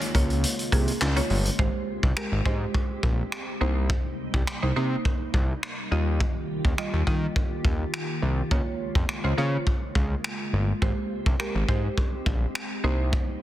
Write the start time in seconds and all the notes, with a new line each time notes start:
Already playing: C#3 G#3 A#3 F4
0.01 closed hi-hat
0.15 C#2 A#3 F4 C#5, kick, closed hi-hat
0.30 closed hi-hat
0.44 closed hi-hat
0.59 closed hi-hat
0.72 C2 A#3 F4 G#4, kick, closed hi-hat
0.88 closed hi-hat
1.01 C#2, snare, clap
1.16 A#3 F4 C#5, closed hi-hat
1.30 G1, open hi-hat
1.45 closed hi-hat
1.59 G#1 G#3 C4 G4 C5, kick
2.03 C2, kick
2.16 G#3 G4 A#4, finger snap
2.32 G#1
2.45 G#2 G#3 G4 C5, kick
2.74 kick
3.03 A#1, kick
3.32 finger snap
3.61 C2 C3 G3 A#3 D#4 C5
3.90 kick
4.34 C2, kick
4.47 finger snap
4.62 C2 D#4 C5
4.76 C3 A#3 D#4 C5
5.05 kick
5.34 C2, kick
5.63 finger snap
5.91 D#2 D#3 G3 F4 G4 D#5
6.20 kick
6.65 D#2, kick
6.78 G3 F4 D#5, finger snap
6.94 D#2
7.07 D#3 G3 F4 D#5, kick
7.36 kick
7.65 D#2, kick
7.94 finger snap
8.22 C2
8.51 C#2 C#3 G#3 A#3 F4 C#5, kick
8.95 F2, kick
9.09 finger snap
9.24 C#2 F4 C5
9.37 C#3 A#3 F4 C#5
9.67 kick
9.95 C#2, kick
10.24 finger snap
10.53 G1
10.82 G#1 G#3 C4 G4 C5, kick
11.26 C2, kick
11.39 G#3 G4 A#4, finger snap
11.55 G#1
11.68 G#2 G#3 G4 C5, kick
11.98 kick
12.26 A#1, kick
12.55 finger snap
12.84 C2 C3 G3 A#3 D#4 C5
13.13 kick